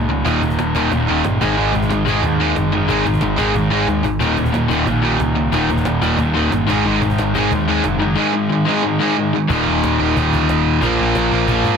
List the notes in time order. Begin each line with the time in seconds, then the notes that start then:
Already playing: C#2 D#2 A#2 D#3
0.09 D#2 A#2
0.25 D#1 D#2 A#2 D#3, cajon bass
0.42 D#1 D#2 A#2, cajon bass
0.50 cajon bass
0.59 D#1 D#2 A#2, cajon slap
0.75 D#1 D#2 A#2 D#3, cajon bass
0.91 D#1 D#2 A#2 D#3, cajon bass
1.07 D#1 D#2 A#2 D#3
1.24 G1 D#2 A#2, cajon slap
1.41 G#1 G#2 D#3 G#3, cajon bass
1.57 G#1 G#2 D#3 G#3
1.74 G#1 G#2 D#3, cajon bass
1.82 cajon bass
1.90 G#1 G#2 D#3, cajon slap
2.07 G#1 G#2 D#3 G#3, cajon bass
2.23 D#2 G#2 D#3, cajon bass
2.40 G#2 D#3 G#3
2.56 F#1 G#2 D#3, cajon slap
2.72 G#2 D#3 G#3
2.89 G#1 G#2 D#3 G#3, cajon bass
3.05 G#1 G#2 D#3, cajon bass
3.14 cajon bass
3.21 G#1 G#2 D#3, cajon slap
3.36 G#1 G#2 D#3 G#3, cajon bass
3.41 G#2 D#3
3.54 G#1 G#2 D#3, cajon bass
3.70 G#1 G#2 D#3 G#3
3.87 D#2 G#2 D#3, cajon slap
4.03 G#1 G#2 D#3, cajon bass
4.21 D#1 D#2 A#2 D#3, cajon bass
4.37 D#1 D#2 A#2, cajon bass
4.45 cajon bass
4.54 D#1 D#2 A#2, cajon slap
4.70 D#1 D#2 A#2 D#3, cajon bass
4.87 A#1 D#2 A#2 D#3, cajon bass
5.04 D#2 A#2 D#3
5.19 C#2 D#2 A#2, cajon slap
5.36 D#2 A#2
5.53 D#1 D#2 A#2 D#3, cajon bass
5.69 D#1 D#2 A#2, cajon bass
5.77 cajon bass
5.85 D#1 D#2 A#2, cajon slap
6.02 D#1 D#2 A#2 D#3, cajon bass
6.18 D#1 D#2 A#2 D#3, cajon bass
6.35 D#1 D#2 A#2 D#3
6.52 G1 D#2 A#2, cajon slap
6.69 G#1 G#2 D#3 G#3, cajon bass
6.85 G#1 G#2 D#3 G#3
7.02 G#1 G#2 D#3, cajon bass
7.10 cajon bass
7.18 G#1 G#2 D#3, cajon slap
7.34 G#1 G#2 D#3 G#3, cajon bass
7.38 G#3
7.51 D#2 G#2 D#3, cajon bass
7.68 G#2 D#3 G#3
7.84 F#1 G#2 D#3, cajon slap
8.02 G#2 D#3 G#3
8.18 G#2 D#3 G#3
8.35 G#2 D#3
8.52 G#2 D#3
8.68 G#2 D#3 G#3
8.85 G#2 D#3
9.01 G#2 D#3 G#3
9.18 G#2 D#3
9.35 G#2 D#3
9.50 D#1 D#2 A#2 D#3, cajon bass
9.68 D#1
9.84 D#1, cajon slap
9.99 D#1 D#2 A#2 D#3
10.16 D#1 D#2 A#2 D#3, cajon bass
10.33 D2, cajon bass
10.49 D#1, cajon slap
10.66 D#1
10.82 A#1 A#2 F3 A#3, cajon bass
10.99 A#1
11.15 A#1, cajon slap
11.31 A#1 A#2 F3 A#3
11.47 A#1 A#2 F3 A#3, cajon bass
11.64 G#2, cajon bass